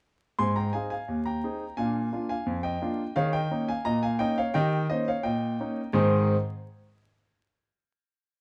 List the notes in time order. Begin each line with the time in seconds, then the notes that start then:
0.39 G#2 C4 G#5 C6
0.56 G5 A#5
0.73 C4 D#4 G#4 F5 G#5
0.90 F5 G#5
1.08 D#2
1.25 G5 A#5
1.44 C4 D#4 G#4
1.77 A#2 D4 F5 G#5
2.12 A#3 D4 F4
2.29 F5 G#5
2.46 F2
2.63 D#5 G5
2.81 A#3 D4 F4
3.16 D#3 G#4 C#5 F5
3.33 D#5 G5
3.51 A#3 C#4 D#4
3.69 F5 G#5
3.85 A#2 D#5 A#5
4.03 F5 G#5
4.19 A#3 C#4 D#4 D#5 G5
4.38 C#5 F5
4.54 D#3 G4 D#5 G5
4.90 A#3 C#4 D#4 C5 D#5
5.08 C#5 F5
5.23 A#2 D#5 G5
5.60 A#3 C#4 D#4
5.93 G#2 D#3 C4 D#4 G#4 C5 G#5